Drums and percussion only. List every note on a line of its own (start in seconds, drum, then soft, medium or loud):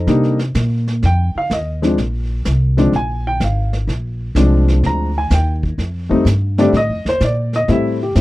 0.07 brush sweep soft
0.07 snare soft
0.23 snare soft
0.39 snare soft
0.55 snare medium
0.55 hi-hat pedal medium
0.88 snare soft
1.02 brush sweep soft
1.02 snare soft
1.50 snare medium
1.50 hi-hat pedal soft
1.83 snare soft
1.98 brush sweep medium
1.98 snare soft
2.45 snare medium
2.45 hi-hat pedal medium
2.78 snare soft
2.93 brush sweep soft
2.93 snare soft
3.40 snare medium
3.40 hi-hat pedal medium
3.73 snare soft
3.89 brush sweep medium
3.89 snare soft
4.36 snare medium
4.36 hi-hat pedal soft
4.68 snare soft
4.84 brush sweep soft
4.84 snare soft
5.30 snare medium
5.30 hi-hat pedal medium
5.63 kick medium
5.79 brush sweep soft
5.79 snare soft
6.11 kick medium
6.26 snare medium
6.26 hi-hat pedal medium
6.58 snare soft
6.74 brush sweep soft
6.74 snare soft
7.06 snare soft
7.20 snare medium
7.20 hi-hat pedal medium
7.53 snare soft
7.68 brush sweep medium
7.68 snare soft
8.15 snare medium
8.15 hi-hat pedal medium